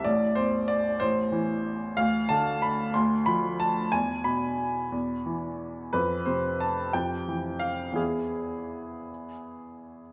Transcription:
<<
  \new Staff \with { instrumentName = "Upright piano" } { \time 3/4 \key e \phrygian \tempo 4 = 180 d''4 c''4 d''4 | c''2. | f''4 a''4 b''4 | c'''4 b''4 a''4 |
gis''4 b''2~ | b''2. | b'4 c''4 a''4 | g''2 f''4 |
gis'2.~ | gis'2~ gis'8 r8 | }
  \new Staff \with { instrumentName = "Upright piano" } { \clef bass \time 3/4 \key e \phrygian a,,4 e,2 | a,,4 e2 | d,4 d2 | d,4 f2 |
e,4 b,2 | e,4 e2 | f,4 c2 | f,4 e2 |
<e, e b e'>2.~ | <e, e b e'>2. | }
>>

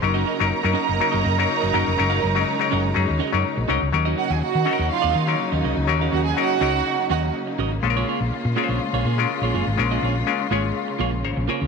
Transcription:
<<
  \new Staff \with { instrumentName = "String section" } { \time 4/4 \key ees \minor \tempo 4 = 123 <bes' bes''>1~ | <bes' bes''>1 | r8 <ges' ges''>16 <aes' aes''>16 <ges' ges''>4 <f' f''>4. r8 | r8 <ges' ges''>16 <aes' aes''>16 <ges' ges''>4. <ges' ges''>8 r4 |
r1 | r1 | }
  \new Staff \with { instrumentName = "Clean electric guitar" } { \time 4/4 \key ees \minor r16 <des' ges' bes' ees''>16 <des' ges' bes' ees''>16 r8. <des' ges' bes' ees''>16 <des' ges' bes' ees''>16 r16 <des' ges' bes' ees''>16 <des' ges' bes' ees''>16 r8 <des' ges' bes' ees''>16 <des' ges' bes' ees''>16 r16 | r16 <des' ges' bes' f''>16 <des' ges' bes' ees''>16 r8. <des' ges' bes' ees''>16 r8. <des' ges' bes' ees''>16 r8. <des' ges' bes' ees''>16 r16 | r16 <des' ges' bes' ees''>16 <des' ges' bes' ees''>16 r8. <des' ges' bes' ees''>16 <des' ges' bes' ees''>16 r16 <des' ges' bes' ees''>16 <des' ges' bes' ees''>16 r8 <des' ges' bes' ees''>16 <des' ges' bes' ees''>16 r16 | r16 <des' ges' bes' f''>16 <des' ges' bes' ees''>16 r8. <des' ges' bes' ees''>16 r8. <des' ges' bes' ees''>16 r8. <des' ges' bes' ees''>16 r16 |
r16 <bes f' aes' des''>16 <bes f' aes' des''>16 r8. <bes f' aes' des''>16 <bes f' aes' des''>16 r16 <bes f' aes' des''>16 <bes f' aes' des''>16 r8 <bes f' aes' des''>16 <bes f' aes' des''>16 r16 | r16 <bes f' aes' ees''>16 <bes f' aes' des''>16 r8. <bes f' aes' des''>16 r8. <bes f' aes' des''>16 r8. <bes f' aes' des''>16 <bes f' aes' des''>16 | }
  \new Staff \with { instrumentName = "Clav" } { \time 4/4 \key ees \minor << { r1 | r1 | r1 | r1 |
r1 | r2 r8 f''8 <c'' des'' bes''>8 <bes' c'' aes''>8 | } \\ { <ges des' ees' bes'>8 r16 <ges des' ees' bes'>8 <ges des' ees' bes'>8 r16 <ges des' ees' bes'>8 r16 <ges des' ees' bes'>8 r16 <ges des' ees' bes'>8 | <ges des' ees' bes'>8 r16 <ges des' ees' bes'>8 <ges des' ees' bes'>8 r16 <ges des' ees' aes'>8 r16 <ges des' ees' bes'>8 r16 <ges des' ees' bes'>8 | <ges des' ees' bes'>4~ <ges des' ees' bes'>16 r16 <ges des' ees' a' bes'>4 r16 <ges des' ees' bes'>4 r16 | <ges des' ees' bes'>8. r16 <ges des' ees' bes'>8 <ges des' ees' bes'>4.~ <ges des' ees' bes'>16 r8. |
<aes des' f' a' bes'>4~ <aes des' f' a' bes'>16 r16 <aes des' f' bes' c''>4 r16 <aes des' f' bes'>4 r16 | <aes des' f' bes'>8. r16 <aes des' f' bes'>8 <aes des' f' des''>4.~ <aes des' f' des''>16 r8. | } >> }
  \new Staff \with { instrumentName = "String section" } { \clef bass \time 4/4 \key ees \minor << { <des ges ees'>1~ | <des ges ees'>1 | <des ges ees'>1~ | <des ges ees'>1 |
<des aes f'>1~ | <des aes f'>1 | } \\ { bes1 | aes1 | bes1~ | bes1~ |
bes1~ | bes1 | } >> }
  \new Staff \with { instrumentName = "Fingered electric bass" } { \clef bass \time 4/4 \key ees \minor ges,,8 r16 ges,,16 r16 ges,16 r16 ges,,16 r16 ges,,16 ges,8 r16 ges,,16 ges,,16 f,,16 | ges,,8 ges,,8 r8 ges,,8 ges,16 ees,16 r16 ges,16 r16 bes,,16 c,16 des,16 | ees,8 r16 ees,16 r16 ees16 r16 ees,16 r16 ees,16 ees8 r16 ees,16 c,16 des,16 | ees,8 ees,8 r8 des,8 r8 ees,8 r8 aes,,8 |
bes,,8 r16 bes,,16 r16 bes,16 r16 bes,,16 r16 bes,,16 bes,8 r16 bes,,16 ges,,16 aes,,16 | bes,,8 bes,,8 r8 aes,,8 r8 bes,,8 aes,,16 bes,,16 r16 des,16 | }
>>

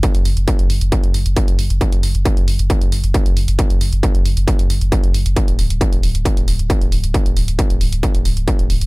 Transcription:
<<
  \new Staff \with { instrumentName = "Sub bass" } { \clef bass \time 4/4 \key d \lydian \tempo 4 = 135 r16 fis,,16 fis,,16 fis,,16 r16 fis,,16 fis,,16 fis,,16 r16 fis,,16 fis,,16 fis,,16 r16 fis,,16 fis,,16 fis,,16 | r16 fis,,16 fis,,16 fis,,16 r16 fis,,16 fis,,16 fis,,16 r16 fis,,16 fis,,16 fis,,16 r16 fis,,16 fis,,16 fis,,16 | r16 fis,,16 fis,,16 fis,,16 r16 fis,,16 fis,,16 fis,,16 r16 fis,,16 fis,,16 fis,,16 r16 fis,,16 fis,,16 fis,,16 | r16 d,,16 d,,16 d,,16 r16 d,,16 d,,16 d,,16 r16 d,,16 d,,16 d,,16 r16 d,,16 d,,16 d,,16 |
r16 d,,16 d,,16 d,,16 r16 d,,16 d,,16 d,,16 r16 d,,16 d,,16 d,,16 r16 d,,16 d,,16 d,,16 | }
  \new DrumStaff \with { instrumentName = "Drums" } \drummode { \time 4/4 <hh bd>16 hh16 hho16 hh16 <hh bd>16 hh16 hho16 hh16 <hh bd>16 hh16 hho16 hh16 <hh bd>16 hh16 hho16 hh16 | <hh bd>16 hh16 hho16 hh16 <hh bd>16 hh16 hho16 hh16 <hh bd>16 hh16 hho16 hh16 <hh bd>16 hh16 hho16 hh16 | <hh bd>16 hh16 hho16 hh16 <hh bd>16 hh16 hho16 hh16 <hh bd>16 hh16 hho16 hh16 <hh bd>16 hh16 hho16 hh16 | <hh bd>16 hh16 hho16 hh16 <hh bd>16 hh16 hho16 hh16 <hh bd>16 hh16 hho16 hh16 <hh bd>16 hh16 hho16 hh16 |
<hh bd>16 hh16 hho16 hh16 <hh bd>16 hh16 hho16 hh16 <hh bd>16 hh16 hho16 hh16 <hh bd>16 hh16 hho16 hh16 | }
>>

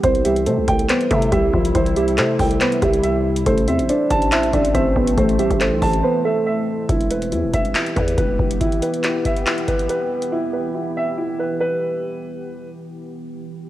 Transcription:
<<
  \new Staff \with { instrumentName = "Grand piano" } { \time 4/4 \key e \minor \tempo 4 = 140 c''8 e''8 c''8 g''8 c''8 e''8 e''4 | c''8 e''8 c''8 g''8 c''8 e''8 e''4 | c''8 e''8 c''8 a''8 c''8 e''8 e''4 | c''8 e''8 c''8 a''8 c''8 e''8 e''4 |
e'8 b'8 e'8 e''8 e'8 b'8 b'4 | e'8 b'8 e'8 e''8 e'8 b'8 b'4 | e'8 b'8 e'8 e''8 e'8 b'8 b'4~ | b'4. r2 r8 | }
  \new Staff \with { instrumentName = "Synth keys" } { \time 4/4 \key e \minor <c' c''>8 <g g'>8 <a a'>4 <b b'>8 <a a'>8 <g g'>8 <f f'>8 | <e e'>8 <g g'>8 <a a'>4 <b b'>8 <g g'>4. | <a a'>8 <c' c''>8 <d' d''>4 <e' e''>8 <d' d''>8 <c' c''>8 <b b'>8 | <a a'>8 <g g'>8 <a a'>4 <b b'>8 <a a'>4. |
r1 | r1 | r1 | r1 | }
  \new Staff \with { instrumentName = "Ambient pad" } { \time 4/4 \key e \minor <c g e'>1~ | <c g e'>1 | <e a c'>1~ | <e a c'>1 |
<e b g'>1~ | <e b g'>1~ | <e b g'>1~ | <e b g'>1 | }
  \new Staff \with { instrumentName = "808-style bass" } { \clef bass \time 4/4 \key e \minor c,4 c16 c,16 c,8 r8 c8 c,8 c,8 | c,4 c8 c,8 r8 c,4. | a,,8 e,16 a,,16 r8 a,,4 a,,8 a,,8 a,,8 | a,,8. a,,8 b,,16 a,,8 r2 |
e,,4 e,16 e,,16 e,,8 r8 e,8 e,,8 e,,8 | r1 | r1 | r1 | }
  \new DrumStaff \with { instrumentName = "Drums" } \drummode { \time 4/4 <hh bd>16 hh16 hh16 hh16 hh8 <hh bd>16 hh16 <hc hh>16 hh16 <hh bd>16 hh16 <hh bd>8 bd16 hh16 | <hh bd>16 hh16 hh16 hh16 <hc hh>8 <hho bd>16 hh16 <hc hh>16 hh16 <hh bd>16 hh16 hh8. hh16 | <hh bd>16 hh16 hh16 hh16 hh8 <hh bd>16 hh16 <hc hh>16 hh16 <hh bd>16 hh16 <hh bd>8 bd16 hh16 | <hh bd>16 hh16 hh16 <hh bd>16 <hc hh>8 <hho bd>16 hh16 r4 r4 |
<hh bd>16 hh16 hh16 hh16 hh8 <hh bd>16 hh16 <hc hh>16 hh16 <hh bd>16 hh16 <hh bd>8 bd16 hh16 | <hh bd>16 hh16 hh16 hh16 <hc hh>8 <hh bd>16 hh16 <hc hh>16 hh16 <hh bd>16 hh16 hh8. hh16 | r4 r4 r4 r4 | r4 r4 r4 r4 | }
>>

